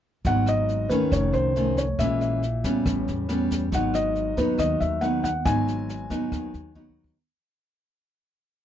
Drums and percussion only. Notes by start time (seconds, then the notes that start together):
0.25 kick, snare
0.46 cross-stick, snare
0.69 snare
0.90 kick, snare
1.12 kick, cross-stick, snare
1.34 snare
1.56 snare
1.77 kick, snare
1.99 kick, cross-stick, snare
2.21 snare
2.43 snare
2.64 kick, snare
2.86 kick, cross-stick, snare
3.08 snare
3.29 cross-stick, snare
3.50 kick, snare
3.72 kick, snare
3.94 cross-stick, snare
4.15 snare
4.37 kick, snare
4.59 kick, cross-stick, snare
4.81 snare
5.03 snare
5.24 kick, snare
5.46 kick, cross-stick, snare
5.67 snare
5.89 snare
6.10 kick, snare
6.32 kick, cross-stick, snare
6.54 snare
6.75 kick
6.90 kick
7.04 kick